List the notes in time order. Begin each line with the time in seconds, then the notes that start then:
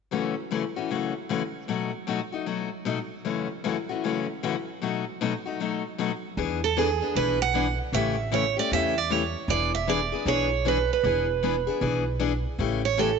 0.11 F#2 C#3 E3 A3 C#4 F#4
0.51 F#2 C#3 E3 A3 C#4 F#4
0.76 E3 A3 C#4 F#4
0.90 F#2 C#3 E3 A3 C#4 F#4
1.29 F#2 C#3 E3 A3 C#4 F#4
1.68 B2 F#3 A3 D#4 F#4
2.07 B2 F#3 A3 D#4 F#4
2.32 A3 D#4 F#4
2.46 B2 F#3 A3 D#4 F#4
2.85 B2 F#3 A3 D#4 F#4
3.25 F#2 C#3 E3 A3 C#4 F#4
3.64 F#2 C#3 E3 A3 C#4 F#4
3.89 E3 A3 C#4 F#4
4.04 F#2 C#3 E3 A3 C#4 F#4
4.43 F#2 C#3 E3 A3 C#4 F#4
4.82 B2 F#3 A3 D#4 F#4
5.21 B2 F#3 A3 D#4 F#4
5.46 A3 D#4 F#4
5.60 B2 F#3 A3 D#4 F#4
5.98 B2 F#3 A3 D#4 F#4
6.37 E2 E3 B3 D4 G#4
6.64 A4
6.77 E3 B3 D4 G#4
7.01 B3 D4 G#4
7.15 B1 E3 B3 D4 G#4 B4
7.42 F#5
7.54 E3 B3 D4 G#4
7.92 A1 C#3 E3 A3 C#4 G4 E5
8.32 C#3 E3 A3 C#4 G4 C#5
8.57 A3 C#4 G4 D5
8.71 E2 C#3 E3 A3 C#4 G4 E5
8.98 D5
9.10 C#3 E3 A3 C#4 G4 C#5
9.48 E1 E3 B3 D4 G#4 D5
9.75 E5
9.87 E3 B3 D4 G#4 D5
10.12 B3 D4 G#4
10.26 B1 E3 B3 D4 G#4 C#5
10.65 E3 B3 D4 G#4 B4
10.93 B4
11.03 E1 E3 B3 D4 G#4
11.43 E3 B3 D4 G#4
11.67 B3 D4 G#4
11.81 B1 E3 B3 D4 G#4
12.19 E3 B3 D4 G#4
12.59 A1 C#3 E3 A3 C#4 G4
12.85 C#5
12.97 C#3 E3 A3 C#4 G4 A4